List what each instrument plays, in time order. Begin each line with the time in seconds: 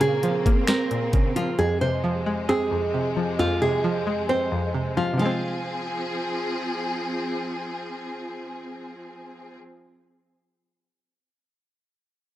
Already playing: synth pluck A#2, string section C#3 A#3 C4
0.01 synth pluck C#3, nylon-string guitar G#4, closed hi-hat
0.23 synth pluck F3, closed hi-hat
0.46 synth pluck A#3, kick, closed hi-hat
0.67 synth pluck C4, nylon-string guitar A#4, finger snap, snare, closed hi-hat
0.91 synth pluck A#2, closed hi-hat
1.13 synth pluck C#3, kick, closed hi-hat
1.36 synth pluck F3, nylon-string guitar F4, closed hi-hat
1.58 string section F2 C3 G#3, synth pluck F2, nylon-string guitar G#4
1.81 synth pluck C3, nylon-string guitar C5
2.04 synth pluck F3
2.26 synth pluck G#3
2.49 synth pluck C4, nylon-string guitar G#4
2.71 synth pluck F2
2.94 synth pluck C3
3.17 synth pluck F3
3.39 synth pluck F2, nylon-string guitar F4
3.62 synth pluck C3, nylon-string guitar G#4
3.84 synth pluck F3
4.07 synth pluck G#3
4.29 synth pluck C4, nylon-string guitar C5
4.52 synth pluck F2
4.74 synth pluck C3
4.97 synth pluck F3, nylon-string guitar F4
5.14 synth pluck C3
5.18 synth pluck F3, string section F3 C4 G#4, nylon-string guitar F4
5.22 synth pluck G#3 C4